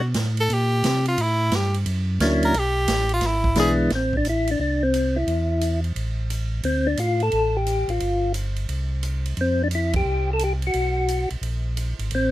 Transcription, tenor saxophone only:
0.40 0.55 A4 loud
0.53 1.08 G4 medium
1.08 1.23 F4 medium
1.22 1.57 E4 medium
1.55 1.76 G4 medium
2.45 2.60 A#4 loud
2.59 3.13 G4 medium
3.13 3.28 F4 medium
3.27 3.59 E4 medium
3.59 3.72 G#4 loud

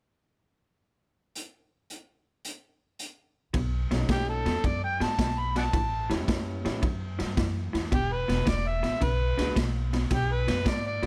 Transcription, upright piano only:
3.91 4.60 F#3 soft
3.91 4.61 A3 soft
3.91 4.61 C#4 soft
3.91 4.61 D#4 soft
6.10 6.61 G3 medium
6.10 6.61 B3 soft
6.10 6.62 C#4 medium
6.10 6.62 E4 medium
6.64 6.80 G3 medium
6.64 6.81 B3 medium
6.64 6.81 C#4 soft
6.64 6.81 E4 medium
9.38 9.54 G#3 medium
9.38 9.54 B3 soft
9.38 9.55 D4 medium
9.38 9.55 F#4 medium
11.02 11.06 A3 soft
11.02 11.06 C#4 soft

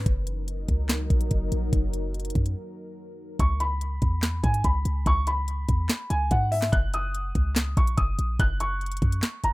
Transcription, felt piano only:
3.40 3.59 C#6 medium
3.60 4.40 B5 medium
4.43 4.63 G#5 medium
4.64 5.04 B5 medium
5.07 5.26 C#6 loud
5.27 6.07 B5 medium
6.10 6.30 G#5 medium
6.31 6.51 F#5 medium
6.52 6.71 E5 medium
6.72 6.92 F#6 medium
6.94 7.73 D#6 medium
7.77 7.97 C#6 medium
7.97 8.37 D#6 medium
8.40 8.59 F#6 loud
8.60 9.40 C#6 medium
9.44 9.53 A#5 medium

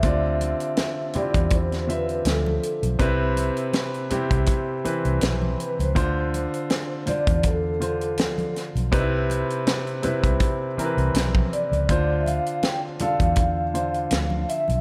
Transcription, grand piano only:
0.00 0.98 D3 medium
0.00 0.98 C4 medium
0.00 0.22 G4 soft
0.00 0.22 C5 soft
0.04 0.98 F4 medium
0.04 0.98 D5 medium
1.15 1.78 D3 medium
1.15 1.78 C4 medium
1.15 1.22 E4 soft
1.15 1.78 G4 medium
1.22 1.81 F4 medium
1.87 2.82 D3 medium
1.87 2.83 C4 soft
1.87 2.83 F4 soft
1.87 2.83 E5 medium
2.99 3.94 C3 loud
2.99 3.94 C4 medium
2.99 3.94 E4 medium
2.99 3.94 B4 loud
4.10 4.74 C3 medium
4.10 4.74 C4 medium
4.10 4.74 E4 medium
4.10 4.74 G4 medium
4.85 5.79 E3 medium
4.85 5.79 C4 medium
4.85 5.79 E4 medium
4.85 5.80 B4 medium
5.95 6.90 D3 medium
5.95 6.90 D4 medium
5.95 6.90 F4 medium
5.95 6.90 C5 loud
7.06 7.70 D3 medium
7.06 7.70 D4 medium
7.06 7.70 F4 medium
7.06 7.70 C5 medium
7.80 8.75 D3 medium
7.80 8.75 D4 medium
7.80 8.76 F4 medium
7.80 8.76 C5 medium
8.92 9.87 C3 loud
8.92 9.87 C4 medium
8.92 8.99 D#4 medium
8.92 9.87 B4 loud
8.99 9.90 E4 medium
10.03 10.66 C3 medium
10.03 10.67 C4 medium
10.03 10.67 E4 medium
10.03 10.67 B4 medium
10.77 11.72 E3 medium
10.77 11.72 C4 medium
10.77 11.73 E4 medium
10.77 10.85 A#4 medium
10.85 11.76 B4 medium
11.89 12.84 D3 medium
11.89 12.84 D4 medium
11.89 12.84 F4 medium
11.89 12.84 C5 medium
13.00 13.63 D3 medium
13.00 13.63 D4 medium
13.00 13.64 F4 medium
13.00 13.64 A4 medium
13.74 14.69 D3 medium
13.74 14.69 D4 medium
13.74 14.69 F4 medium
13.74 14.69 C5 medium

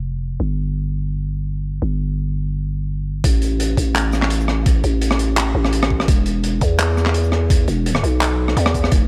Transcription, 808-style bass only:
0.00 0.38 F1 medium
0.40 1.80 G1 medium
1.82 3.22 G1 medium
3.24 3.76 A1 medium
3.77 4.83 A1 medium
4.84 5.54 A1 medium
5.55 6.07 A1 loud
6.08 6.60 E1 loud
6.61 7.67 E2 loud
7.68 8.02 E1 medium
8.03 8.55 B1 loud
8.57 8.91 E2 loud
8.92 9.08 F1 loud

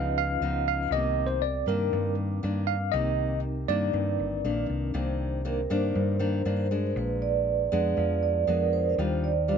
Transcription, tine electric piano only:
0.00 0.17 F5 medium
0.18 0.67 F5 medium
0.68 0.91 F5 medium
0.92 1.27 D#5 medium
1.27 1.43 C5 medium
1.42 1.65 D5 medium
1.68 2.14 A#4 medium
2.67 2.93 F5 medium
2.92 3.39 D#5 medium
3.68 4.65 D5 medium

